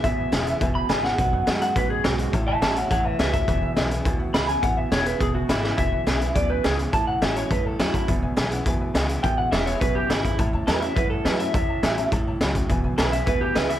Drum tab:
HH |x-xxx-x-|x-xxx-xx|x-xxx-xx|x-xxx-xx|
SD |--o---oo|--o---o-|--o---o-|--o---o-|
BD |o---o---|o---o---|o---o--o|o---o---|

HH |x-xxx-x-|x-xxx-xx|x-xxx-xx|x-xxx-xx|
SD |--o---oo|--o---o-|--o---o-|--o---o-|
BD |o---o---|o---o---|o---o--o|o---o---|

HH |x-xxx-xx|x-xxx-xx|x-xxx-xx|x-xxx-xx|
SD |--o---o-|--o---o-|--o---o-|--o---o-|
BD |o---o--o|o---o---|o---o--o|o---o---|